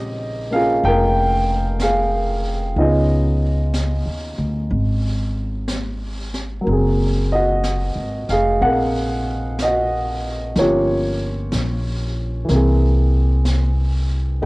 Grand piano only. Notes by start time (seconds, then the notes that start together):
Already playing: C#3 G#3 C4 D#4 G4 D#5
0.51 A#3 C#4 F4 F5
0.55 G#4
0.85 A#4 G5
1.82 G#4 F5
2.78 B3 C#4 D#4 F4 G#4 D#5
6.61 F#3 A#3
6.68 C4 G#4
7.32 F#4 D#5
8.30 G#4 F5
8.61 C4 A#4 F#5
9.62 F#4 D#5
10.56 F3 A#3 C#4 C#5
10.60 F4 G4
12.45 E3 A#3
12.52 C4 G#4
14.42 D#3 G#3